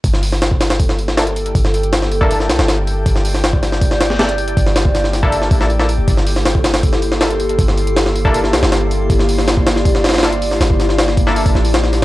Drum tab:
HH |o---o---o---o-o-o---o---o-x-o-x-|o---o-x-o---o---o---o---o---o---|o---o---o---o---o---o---o-x-o-x-|o---o---o---o---o---o---o---o---|
SD |--o---o-o---o-o---o---o-o-------|--o-----o-o-------o-o-o-o-------|--o---o-o---o-o---o-o-o-o-------|--o-o---o-o-o-----o---o---o-----|
BD |o---------o-----o---------------|o-------------o-----------------|o---------o-----o---------------|o-----o-------o-----o-----------|

HH |o---o---o---o-o-o---o---o-x-o-x-|o---o-x-o---o---o---o---o---o---|o---o---o---o---o---ooooo-x-o---|o---o---o---o---o-o---o-o---o---|
SD |--o---o-o---o-o---o---o-o-------|--o-----o-o-------o-o-o-o-------|--o---o-o---o-o---o-ooooo-----o-|o---o-o-o-o---o-----o---o-o-o---|
BD |o---------o-----o---------------|o-------------o-----------------|o---------o-----o---------------|--o---------o-----o-------------|